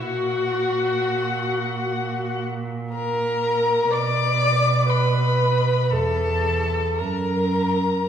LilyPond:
<<
  \new Staff \with { instrumentName = "Violin" } { \time 4/4 \key fis \phrygian \tempo 4 = 61 fis''2~ fis''8 r8 ais''4 | d'''4 b''4 a''4 ais''4 | }
  \new Staff \with { instrumentName = "Viola" } { \time 4/4 \key fis \phrygian fis'2~ fis'8 r8 ais'4 | d''4 b'4 a'4 ais'4 | }
  \new Staff \with { instrumentName = "Violin" } { \time 4/4 \key fis \phrygian fis'2~ fis'8 r8 ais'4 | d''4 b'4 a'4 ais'4 | }
  \new Staff \with { instrumentName = "Cello" } { \clef bass \time 4/4 \key fis \phrygian ais,1 | b,2 e,4 fis,4 | }
>>